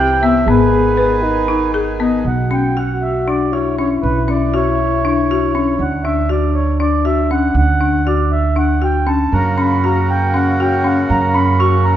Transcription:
0.00 0.44 C2 medium
0.00 0.44 E3 medium
0.00 0.45 C4 medium
0.00 0.18 G4 medium
0.00 0.20 G4 medium
0.00 0.45 G4 medium
0.00 0.25 G5 loud
0.22 0.44 B3 medium
0.22 0.48 E5 medium
0.46 2.22 G#1 medium
0.46 2.24 D#3 medium
0.46 2.24 B3 medium
0.46 0.90 B3 medium
0.46 2.24 G#4 medium
0.46 1.25 G#4 loud
0.46 1.71 B4 medium
0.97 1.40 B4 medium
1.23 2.00 D#4 medium
1.48 1.70 D#4 medium
1.74 1.96 G#4 medium
2.00 2.22 B3 medium
2.00 2.27 D#5 medium
2.25 3.99 B1 medium
2.25 3.55 F#4 medium
2.25 2.53 F#5 medium
2.51 2.72 C#4 medium
2.51 2.78 G5 medium
2.77 3.19 F#4 medium
2.77 3.03 F#5 medium
3.02 3.28 E5 medium
3.27 3.49 D4 medium
3.27 3.54 D5 medium
3.52 5.78 E4 medium
3.52 3.74 F#4 medium
3.52 3.76 C#5 medium
3.79 4.00 C#4 medium
3.79 3.90 C#5 medium
4.03 5.75 B1 medium
4.03 4.29 B4 medium
4.28 4.50 C#4 medium
4.28 4.55 D5 medium
4.54 4.96 F#4 medium
4.54 5.83 C#5 medium
5.05 5.26 D4 medium
5.31 5.51 F#4 medium
5.55 5.75 C#4 medium
5.79 7.51 D2 medium
5.79 9.03 D4 medium
5.79 6.06 F#5 medium
6.04 6.25 D4 medium
6.04 6.30 E5 medium
6.29 6.71 F#4 medium
6.29 6.55 D5 medium
6.54 6.78 C#5 medium
6.80 7.01 D4 medium
6.80 7.06 D5 medium
7.05 7.26 F#4 medium
7.05 7.31 E5 medium
7.31 7.51 C#4 medium
7.31 7.56 F#5 medium
7.54 9.29 D2 medium
7.54 8.08 F#5 medium
7.81 8.01 D4 medium
8.07 8.49 F#4 medium
8.07 8.32 D5 medium
8.32 8.57 E5 medium
8.56 8.77 D4 medium
8.56 8.83 F#5 medium
8.82 9.03 F#4 medium
8.82 9.09 G5 medium
9.07 9.28 C#4 medium
9.07 9.34 A5 medium
9.32 11.06 F#2 medium
9.32 11.97 C#3 medium
9.32 11.97 A#3 medium
9.32 11.97 C#4 medium
9.32 11.97 F#4 medium
9.32 9.59 A#5 medium
9.58 9.79 C#4 medium
9.58 9.85 B5 medium
9.84 10.26 F#4 medium
9.84 10.10 A#5 medium
10.10 10.36 G5 medium
10.34 10.55 C#4 medium
10.34 10.61 F#5 medium
10.60 10.81 F#4 medium
10.60 10.86 G5 medium
10.84 11.06 C#4 medium
10.84 11.11 F#5 medium
11.10 11.97 F#2 medium
11.10 11.36 A#5 medium
11.34 11.55 C#4 medium
11.34 11.60 B5 medium
11.59 11.97 F#4 medium
11.59 11.85 C#6 medium
11.84 11.97 A#5 medium

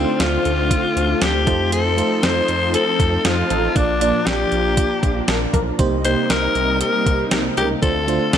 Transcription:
0.00 0.41 D3 medium
0.00 1.45 D3 medium
0.00 1.45 A3 medium
0.00 1.46 A3 medium
0.00 0.22 C4 medium
0.00 1.45 C4 medium
0.00 1.49 D4 medium
0.00 1.47 D#4 soft
0.00 1.45 F4 medium
0.00 1.47 F4 medium
0.00 1.48 C5 medium
0.20 0.38 D2 loud
0.20 1.24 F4 medium
0.20 snare loud
0.20 closed hi-hat medium
0.45 0.73 D2 loud
0.45 closed hi-hat medium
0.71 kick medium
0.71 closed hi-hat medium
0.96 1.15 D2 loud
0.96 closed hi-hat medium
1.21 1.49 D2 loud
1.21 1.32 F3 medium
1.21 1.32 D4 medium
1.21 1.72 G4 medium
1.21 1.32 A4 loud
1.21 snare loud
1.21 closed hi-hat medium
1.46 2.02 F2 medium
1.46 5.75 F3 medium
1.46 1.69 F3 medium
1.46 1.87 A3 medium
1.46 3.74 C4 medium
1.46 1.88 D#4 medium
1.46 3.74 D#4 medium
1.46 1.69 D#4 loud
1.46 1.88 F4 medium
1.46 3.74 A4 medium
1.46 1.69 A4 loud
1.46 1.88 C5 medium
1.46 kick loud
1.46 closed hi-hat medium
1.72 2.25 A4 loud
1.72 closed hi-hat medium
1.97 2.71 A3 medium
1.97 2.71 D#4 medium
1.97 2.71 F4 medium
1.97 2.71 C5 medium
1.97 closed hi-hat medium
2.23 2.42 F2 loud
2.23 2.74 C5 loud
2.23 snare loud
2.23 closed hi-hat medium
2.48 2.76 F2 loud
2.48 closed hi-hat medium
2.74 3.27 A4 loud
2.74 closed hi-hat medium
3.00 3.18 F2 loud
3.00 kick medium
3.00 closed hi-hat medium
3.25 3.43 F2 medium
3.25 3.36 F3 medium
3.25 3.36 D#4 loud
3.25 3.78 F4 loud
3.25 3.36 A4 loud
3.25 snare loud
3.25 closed hi-hat medium
3.50 3.69 A1 medium
3.50 3.72 F3 medium
3.50 3.72 D#4 medium
3.50 3.72 A4 loud
3.50 closed hi-hat medium
3.75 4.13 A#1 loud
3.75 4.48 A#2 medium
3.75 3.94 A#3 medium
3.75 5.77 A#3 medium
3.75 3.94 D4 medium
3.75 5.77 D4 medium
3.75 4.29 D4 medium
3.75 3.94 F4 medium
3.75 3.94 D5 medium
3.75 kick loud
3.75 closed hi-hat medium
4.01 4.74 A#3 medium
4.01 4.75 D4 medium
4.01 4.75 F4 medium
4.01 4.75 D5 medium
4.01 closed hi-hat medium
4.27 4.45 A#1 loud
4.27 5.29 G4 medium
4.27 snare loud
4.27 closed hi-hat medium
4.52 4.80 A#1 loud
4.52 closed hi-hat medium
4.77 kick medium
4.77 closed hi-hat medium
5.03 5.21 A#1 loud
5.03 kick medium
5.03 closed hi-hat medium
5.28 5.47 A#1 loud
5.28 5.39 F3 loud
5.28 5.39 D4 medium
5.28 5.39 A#4 loud
5.28 snare loud
5.28 closed hi-hat medium
5.53 5.72 B1 medium
5.53 5.75 F3 medium
5.53 5.76 D4 medium
5.53 5.76 A#4 loud
5.53 kick medium
5.53 closed hi-hat medium
5.79 6.16 C2 medium
5.79 6.51 C3 medium
5.79 7.81 C3 medium
5.79 7.81 G3 medium
5.79 5.97 A#3 medium
5.79 7.81 A#3 medium
5.79 5.97 D#4 medium
5.79 7.81 D#4 medium
5.79 5.98 G4 medium
5.79 5.98 C5 medium
5.79 kick loud
5.79 closed hi-hat medium
6.04 6.78 A#3 medium
6.04 6.78 D#4 medium
6.04 6.78 G4 medium
6.04 6.31 C5 loud
6.04 6.78 C5 medium
6.04 closed hi-hat medium
6.30 6.48 C2 medium
6.30 6.81 A#4 medium
6.30 snare loud
6.30 closed hi-hat medium
6.55 6.83 C2 medium
6.55 closed hi-hat medium
6.81 7.28 A#4 medium
6.81 closed hi-hat medium
7.06 7.25 C2 loud
7.06 kick medium
7.06 closed hi-hat medium
7.31 7.50 C2 loud
7.31 7.43 G3 medium
7.31 7.43 D#4 medium
7.31 7.43 A#4 loud
7.31 snare loud
7.31 closed hi-hat medium
7.57 7.76 C#2 medium
7.57 7.79 G3 medium
7.57 7.79 D#4 medium
7.57 7.69 G4 medium
7.57 7.79 A#4 loud
7.57 closed hi-hat medium
7.82 8.19 D2 loud
7.82 8.38 D3 medium
7.82 8.01 A3 medium
7.82 8.38 A3 medium
7.82 8.38 C4 medium
7.82 8.01 D4 medium
7.82 8.01 F4 medium
7.82 8.38 F4 medium
7.82 8.30 A4 loud
7.82 8.01 C5 medium
7.82 kick loud
7.82 closed hi-hat medium
8.07 8.38 A3 medium
8.07 8.38 D4 medium
8.07 8.38 F4 medium
8.07 8.38 C5 medium
8.07 closed hi-hat medium
8.33 8.38 D2 loud
8.33 8.38 A4 loud
8.33 snare loud
8.33 closed hi-hat medium

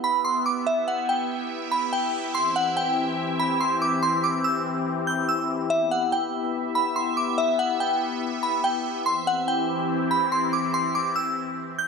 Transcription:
0.00 2.31 B3 medium
0.00 9.02 E4 medium
0.00 9.02 G4 medium
0.00 5.66 E5 loud
0.00 0.20 B5 medium
0.25 0.41 C6 medium
0.46 0.62 D6 medium
0.67 0.82 E5 medium
0.88 1.04 F#5 medium
1.09 1.48 G5 medium
1.71 1.87 B5 medium
1.93 2.32 G5 medium
2.35 5.67 E3 medium
2.35 5.67 C4 medium
2.35 2.50 C6 medium
2.56 2.72 F#5 medium
2.77 3.16 G5 medium
3.40 3.55 B5 medium
3.61 3.76 C6 medium
3.82 3.97 D6 medium
4.03 4.18 C6 medium
4.24 4.39 D6 medium
4.44 4.84 E6 medium
5.07 5.23 G6 medium
5.29 5.68 E6 medium
5.70 9.03 B3 medium
5.70 5.86 E5 loud
5.70 11.88 E5 loud
5.91 6.07 F#5 medium
6.12 6.52 G5 medium
6.75 6.91 B5 medium
6.96 7.12 C6 medium
7.17 7.33 D6 medium
7.38 7.54 E5 medium
7.59 7.75 F#5 medium
7.80 8.20 G5 medium
8.43 8.59 B5 medium
8.64 9.03 G5 medium
9.06 11.88 E3 medium
9.06 11.88 C4 medium
9.06 11.88 E4 medium
9.06 11.88 G4 medium
9.06 9.22 C6 medium
9.27 9.43 F#5 medium
9.48 9.87 G5 medium
10.11 10.27 B5 medium
10.32 10.48 C6 medium
10.53 10.69 D6 medium
10.74 10.90 C6 medium
10.95 11.11 D6 medium
11.16 11.55 E6 medium
11.79 11.88 G6 medium

